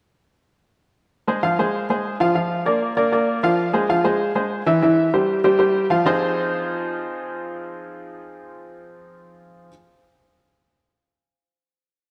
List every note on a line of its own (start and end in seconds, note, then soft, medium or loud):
1.27 1.40 G#3 medium
1.27 1.41 G#4 medium
1.27 1.41 C5 medium
1.43 1.56 F3 medium
1.43 1.56 F4 medium
1.43 1.56 F5 medium
1.59 1.84 G#3 medium
1.59 1.84 G#4 medium
1.59 1.84 C5 medium
1.89 2.15 G#3 medium
1.89 2.15 G#4 medium
1.89 2.15 C5 medium
2.20 2.33 F3 medium
2.20 2.33 F4 medium
2.20 2.33 F5 medium
2.35 2.60 F3 medium
2.35 2.60 F4 medium
2.35 2.61 F5 medium
2.66 2.91 A#3 medium
2.66 2.91 A#4 medium
2.66 2.92 D5 medium
2.97 3.10 A#3 medium
2.97 3.10 A#4 medium
2.97 3.10 D5 medium
3.12 3.38 A#3 medium
3.12 3.38 A#4 medium
3.12 3.38 D5 medium
3.43 3.69 F3 medium
3.43 3.69 F4 medium
3.43 3.69 F5 medium
3.73 3.86 G#3 medium
3.73 3.87 G#4 medium
3.73 3.87 C5 medium
3.89 4.02 F3 medium
3.89 4.02 F4 medium
3.89 4.02 F5 medium
4.04 4.30 G#3 medium
4.04 4.30 G#4 medium
4.04 4.30 C5 medium
4.35 4.61 G#3 medium
4.35 4.61 G#4 medium
4.35 4.61 C5 medium
4.66 4.79 E3 medium
4.66 4.79 E4 medium
4.66 4.80 E5 medium
4.82 5.08 E3 medium
4.82 5.08 E4 medium
4.82 5.08 E5 medium
5.14 5.39 G3 medium
5.14 5.39 G4 medium
5.14 5.39 C5 medium
5.44 5.57 G3 medium
5.44 5.57 G4 medium
5.44 5.57 C5 medium
5.59 5.84 G3 medium
5.59 5.85 G4 medium
5.59 5.85 C5 medium
5.90 6.03 F3 medium
5.90 6.03 F4 medium
5.90 6.03 F5 medium
6.05 9.68 F3 medium
6.05 9.68 C4 medium
6.05 9.68 D#4 medium
6.05 9.69 F4 medium
6.05 9.69 G#4 medium
6.05 9.69 C5 loud